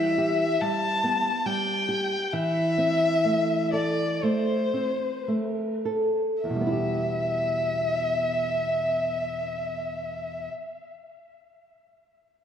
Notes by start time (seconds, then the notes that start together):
Already playing: E3 G3 E5
0.18 G4
0.61 G3 A5
1.04 B3
1.45 G3 G5
1.89 G4
2.32 E3 E5
2.78 C4
3.25 A3
3.73 A4 D5
4.23 A3 C5
4.74 C4
5.28 A3
5.85 A4
6.43 E2 E5
6.49 B2
6.55 G3
6.61 B3
6.67 E4
6.72 G4